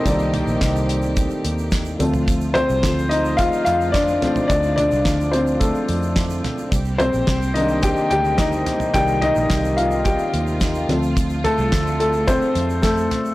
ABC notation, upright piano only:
X:1
M:4/4
L:1/8
Q:1/4=108
K:Cdor
V:1 name="Upright piano"
[Ee]4- [Ee] z3 | z [Cc]2 [Ee] [Ff] [Ff] [Dd]2 | [Dd] [Dd]2 [Cc] [A,A]2 z2 | z [Cc]2 [Ee] [Gg] [Gg] [Ee]2 |
[Gg] [Ee]2 [Ff] [Gg]2 z2 | z [A,A]2 [A,A] [Cc]2 [A,A]2 |]
V:2 name="Upright piano"
[E,B,d]3 z4 [F,A,C]- | [F,A,C]2 [F,A,C] z4 [F,A,C]- | [F,A,C]2 z6 | z3 [E,B,D]3 z2 |
[E,B,d]3 z4 [F,A,C]- | [F,A,C]6- [F,A,C] z |]